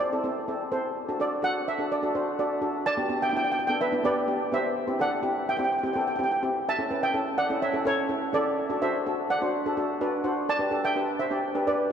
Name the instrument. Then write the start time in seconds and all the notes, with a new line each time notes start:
steel pan
0.00 D5
0.13 C4 E4 A4
0.24 C4 E4 A4
0.48 C4 E4 A4
0.72 C4 E4 A4 C5
1.08 D4 F#4 A4
1.19 D4 F#4 A4 D5
1.42 D4 F#4 A4 F#5
1.68 E5
1.79 D4 F#4 A4
1.92 D5
2.03 D4 F#4 A4
2.15 D4 F#4 C5
2.39 D4 F#4 A4 D5
2.61 D4 F#4 A4
2.86 D5 A5
2.97 B3 D4 G4
3.09 B3 D4 G4
3.22 E5 G5
3.30 B3 D4 E4 G5
3.37 G5
3.45 G5
3.52 G5
3.59 G5
3.67 B3 D4 A4 G5
3.81 B4 E5
3.92 B3 D4 E4
4.04 B3 D4 G4 B4 D5
4.28 B3 D4 G4
4.52 B3 D4 G4 C5 E5
4.87 C4 E4 G4
4.99 C4 E4 A4 D5 F#5
5.22 C4 E4 G4
5.49 E5 G5
5.57 C4 E4 G4 G5
5.64 G5
5.72 G5
5.78 G5
5.83 C4 E4 G4 G5
5.93 C4 E4 A4 G5
6.00 G5
6.07 G5
6.16 C4 E4 G4 G5
6.24 G5
6.31 G5
6.43 C4 E4 G4
6.69 E5 A5
6.79 C#4 E4 A4
6.91 C#4 E4 B4
7.03 E5 G5
7.14 C#4 E4 A4
7.38 D5 F#5
7.50 C#4 E4 A4
7.62 C#5 E5
7.73 C#4 E4 A4
7.85 C#4 E4 A4 C#5
8.09 C#4 E4 A4
8.33 C#4 E4 A4 D5
8.69 D4 F#4 A4
8.82 D4 F#4 A4 C5 E5
9.06 D4 F#4 A4
9.30 D5 F#5
9.42 D4 F#4 C5
9.66 D4 F#4 A4
9.77 D4 F#4 A4
10.01 D4 F#4 B4 D5
10.24 D4 F#4 C5 F#5
10.49 D5 A5
10.59 D4 G4 B4
10.71 D4 G4 A4
10.85 E5 G5
10.96 D4 G4 B4
11.19 C5 E5
11.31 D4 G4 D5
11.55 D4 G4 B4
11.67 D4 G4 B4 D5